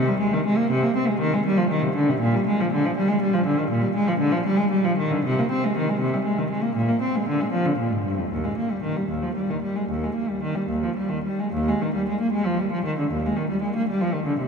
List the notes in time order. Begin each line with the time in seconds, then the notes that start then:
0.08 G3
0.20 G#3
0.33 D#3
0.46 G#3
0.57 A#3
0.71 C3
0.83 A#3
0.97 C4
1.08 G#3
1.20 D#3
1.34 G#3
1.46 G3
1.57 F3
1.70 D#3
1.82 C3
1.96 D3
2.09 C3
2.20 A#2
2.34 G3
2.47 G#3
2.61 F3
2.73 D3
2.85 F3
2.96 G3
3.08 G#3
3.22 G3
3.34 F3
3.46 D3
3.59 D#3
3.71 A#2
3.81 G3
3.95 G#3
4.08 F3
4.20 D3
4.32 F3
4.46 G3
4.57 G#3
4.71 G3
4.85 F3
4.98 D#3
5.11 D3
5.25 C3
5.39 A#3
5.51 C4
5.65 G#3
5.77 D#3
5.90 G#3
6.00 C3
6.14 G3
6.25 G#3
6.38 D#3
6.50 G#3
6.63 A#3
6.76 A#2
6.89 A#3
7.02 C4
7.16 G#3
7.28 D3
7.41 G#3
7.52 F3
7.66 D3
7.78 A#2
7.91 G#2
8.05 G2
8.19 F2
8.31 D#2
8.45 G#3
8.58 A#3
8.71 G3
8.83 D#3
8.97 G3
9.09 D#2
9.23 F3
9.35 G3
9.49 D#3
9.62 G3
9.76 G#3
9.90 D#2
10.04 G#3
10.15 A#3
10.30 G3
10.43 D#3
10.55 G3
10.69 D#2
10.83 F3
10.96 G3
11.09 D#3
11.24 G3
11.40 G#3
11.54 D#2
11.69 G#3
11.82 D#3
11.94 G3
12.09 G#3
12.21 A#3
12.32 G#3
12.46 F3
12.59 G3
12.72 F3
12.85 D#3
12.99 D3
13.11 D#2
13.26 G#3
13.37 D#3
13.50 G3
13.62 G#3
13.76 A#3
13.89 G3
14.01 F3
14.14 D#3
14.26 D3
14.39 C3